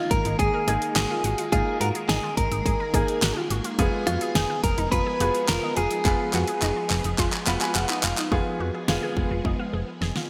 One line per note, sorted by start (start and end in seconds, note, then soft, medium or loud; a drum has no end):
0.00 3.75 D#3 medium
0.00 8.28 G#3 medium
0.00 3.75 A#3 medium
0.00 0.12 F4 loud
0.00 0.15 F4 medium
0.00 8.28 G#4 medium
0.11 0.22 G#1 loud
0.11 0.39 A#4 loud
0.11 kick loud
0.11 closed hi-hat medium
0.25 0.36 G#1 loud
0.25 0.34 D#4 medium
0.25 closed hi-hat medium
0.39 0.50 G#1 loud
0.39 0.95 G#4 loud
0.39 0.49 G#4 medium
0.39 kick medium
0.39 closed hi-hat medium
0.54 0.63 A#4 medium
0.67 0.78 G#1 loud
0.67 1.20 A#3 medium
0.67 1.20 D#4 medium
0.67 1.20 G#4 medium
0.67 0.86 G#4 medium
0.67 closed hi-hat medium
0.82 closed hi-hat soft
0.96 1.06 G#1 loud
0.96 1.05 F#4 medium
0.96 1.48 G#4 loud
0.96 snare loud
0.96 clap loud
0.96 closed hi-hat medium
1.10 1.19 F4 medium
1.24 1.35 G#1 loud
1.24 1.33 F#4 medium
1.24 closed hi-hat medium
1.38 1.48 F4 medium
1.38 closed hi-hat medium
1.52 1.63 G#1 loud
1.52 2.22 A#3 medium
1.52 2.22 D#4 medium
1.52 2.22 F4 medium
1.52 1.79 G#4 loud
1.52 1.71 G#4 loud
1.52 kick loud
1.52 closed hi-hat medium
1.81 1.91 G#2 loud
1.81 1.90 F#4 medium
1.81 1.88 A#4 medium
1.81 closed hi-hat medium
1.95 2.04 G#4 medium
1.95 closed hi-hat medium
2.09 2.20 G#1 loud
2.09 2.18 D#4 medium
2.09 2.37 G#4 loud
2.09 snare loud
2.09 closed hi-hat medium
2.23 2.42 F4 medium
2.37 2.48 G#1 loud
2.37 3.46 A#4 medium
2.37 kick medium
2.37 closed hi-hat medium
2.51 2.62 G#1 loud
2.51 2.61 D#4 medium
2.51 closed hi-hat medium
2.66 2.76 G#1 loud
2.66 2.75 G#4 medium
2.66 kick medium
2.66 closed hi-hat medium
2.80 2.89 A#4 medium
2.94 3.04 G#1 medium
2.94 3.46 A#3 medium
2.94 3.46 D#4 medium
2.94 3.46 G#4 medium
2.94 3.12 G#4 medium
2.94 kick loud
2.94 closed hi-hat medium
3.08 closed hi-hat soft
3.22 3.33 G#1 medium
3.22 3.31 F#4 medium
3.22 snare loud
3.22 clap medium
3.22 closed hi-hat medium
3.37 3.46 F4 medium
3.50 3.61 G#1 loud
3.50 3.60 F#4 medium
3.50 closed hi-hat medium
3.64 3.74 F4 medium
3.64 closed hi-hat medium
3.79 3.89 F1 loud
3.79 8.28 F3 medium
3.79 4.49 B3 medium
3.79 8.28 B3 medium
3.79 4.49 F4 medium
3.79 3.97 G#4 loud
3.79 4.49 G#4 loud
3.79 kick loud
3.79 closed hi-hat medium
4.07 4.18 F2 loud
4.07 4.36 F4 medium
4.07 4.17 F#4 medium
4.07 closed hi-hat medium
4.21 4.31 G#4 medium
4.21 closed hi-hat medium
4.35 4.46 F1 loud
4.35 4.45 D#4 medium
4.35 4.62 G#4 loud
4.35 snare loud
4.35 closed hi-hat medium
4.50 4.68 F4 medium
4.64 4.74 F1 loud
4.64 4.91 A#4 loud
4.64 kick loud
4.64 closed hi-hat medium
4.78 4.88 F1 loud
4.78 4.87 D#4 medium
4.78 closed hi-hat medium
4.92 5.03 F1 loud
4.92 5.01 F4 medium
4.92 5.48 B4 loud
4.92 kick medium
4.92 closed hi-hat medium
5.06 5.15 G#4 medium
5.20 5.31 F1 loud
5.20 5.73 B3 medium
5.20 5.73 F4 medium
5.20 5.39 F#4 medium
5.20 5.73 G#4 medium
5.20 closed hi-hat medium
5.35 closed hi-hat medium
5.48 5.59 F1 loud
5.48 5.58 F4 medium
5.48 5.75 A#4 loud
5.48 snare loud
5.48 clap loud
5.48 closed hi-hat medium
5.63 5.72 D#4 medium
5.77 5.88 F1 loud
5.77 5.86 F4 medium
5.77 7.71 G#4 medium
5.77 closed hi-hat medium
5.91 6.00 D#4 medium
5.91 closed hi-hat medium
6.05 6.16 F1 loud
6.05 6.75 B3 medium
6.05 6.75 F4 medium
6.05 6.24 G#4 loud
6.05 6.75 B4 medium
6.05 kick loud
6.05 clap medium
6.05 closed hi-hat medium
6.33 6.44 F2 loud
6.33 6.43 F#4 medium
6.33 clap medium
6.33 closed hi-hat medium
6.47 6.57 G#4 medium
6.47 closed hi-hat medium
6.62 6.73 F1 loud
6.62 6.71 D#4 medium
6.62 clap medium
6.62 closed hi-hat medium
6.76 6.94 F4 medium
6.90 7.01 F1 loud
6.90 clap medium
6.90 open hi-hat medium
7.04 7.15 F1 loud
7.04 7.14 D#4 medium
7.04 closed hi-hat medium
7.18 7.29 F1 loud
7.18 7.28 F4 medium
7.18 kick medium
7.18 clap medium
7.18 closed hi-hat medium
7.33 7.42 G#4 medium
7.33 clap medium
7.47 7.57 F1 loud
7.47 7.99 B3 medium
7.47 7.99 F4 medium
7.47 7.65 F#4 medium
7.47 7.99 B4 loud
7.47 7.60 B5 medium
7.47 clap medium
7.47 closed hi-hat medium
7.61 7.74 G#5 medium
7.61 clap medium
7.61 closed hi-hat soft
7.75 7.86 F1 loud
7.75 7.84 F4 medium
7.75 8.01 F#5 medium
7.75 clap loud
7.75 closed hi-hat medium
7.89 7.99 D#4 medium
7.89 clap medium
8.03 8.14 F1 loud
8.03 8.13 F4 medium
8.03 8.30 F5 medium
8.03 clap loud
8.03 closed hi-hat medium
8.17 8.27 D#4 medium
8.17 clap loud
8.17 closed hi-hat medium
8.32 8.42 F1 loud
8.32 10.30 F3 medium
8.32 10.30 G#3 medium
8.32 8.67 B3 medium
8.32 10.30 B3 medium
8.32 8.67 F4 medium
8.32 8.50 F4 medium
8.32 8.67 G#4 loud
8.32 10.30 G#4 medium
8.32 kick loud
8.60 8.71 F2 medium
8.60 8.69 F#4 medium
8.74 8.84 G#4 medium
8.88 8.99 F1 loud
8.88 9.58 B3 medium
8.88 9.58 F4 medium
8.88 8.97 F4 medium
8.88 9.58 G#4 loud
8.88 snare loud
9.03 9.21 G#4 medium
9.17 9.27 F1 loud
9.17 kick medium
9.31 9.41 F1 loud
9.31 9.40 F4 medium
9.45 9.55 F1 loud
9.45 9.54 D#4 medium
9.45 kick medium
9.59 9.68 F4 medium
9.73 9.84 F1 loud
9.73 9.92 G#4 medium
10.01 10.12 F1 loud
10.01 10.11 G#4 medium
10.01 snare medium
10.16 10.25 F4 medium
10.16 snare medium